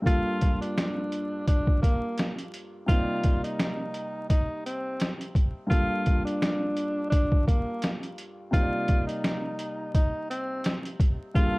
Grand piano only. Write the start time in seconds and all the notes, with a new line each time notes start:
0.02 G2 G3 A#3 F4
0.07 A4
2.86 C3 G3 A#3 D#4
2.91 C5
2.97 D5
5.67 G2 G3 A#3 F4
5.71 A4
8.51 C3 G3 A#3 D#4
8.55 C5
8.62 D5
11.34 G2 G3 A#3 F4
11.39 G#4
11.45 A4